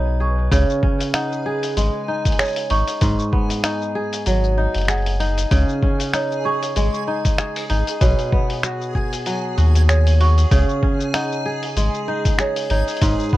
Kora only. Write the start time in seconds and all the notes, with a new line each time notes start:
Already playing: B2 F#3 D#4 G#4
0.20 G#4
0.51 C#3
0.83 C#4
1.14 D#4
1.46 G#4
1.77 G#3
2.08 D#4
2.39 G#4
2.70 D#4
3.02 G#2
3.33 B3
3.64 D#4
3.95 G#4
4.26 F#3
4.58 D#4
4.89 G#4
5.20 D#4
5.51 C#3
5.82 C#4
6.14 D#4
6.45 G#4
6.76 G#3
7.07 D#4
7.39 G#4
7.70 D#4
8.01 B2
8.32 B3
8.64 F#4
8.95 G#4
9.26 F#3
9.58 F#4
9.89 G#4
10.20 F#4
10.51 C#3
10.83 C#4
11.14 D#4
11.46 G#4
11.77 G#3
12.08 D#4
12.39 G#4
12.71 D#4
13.02 G#2
13.33 B3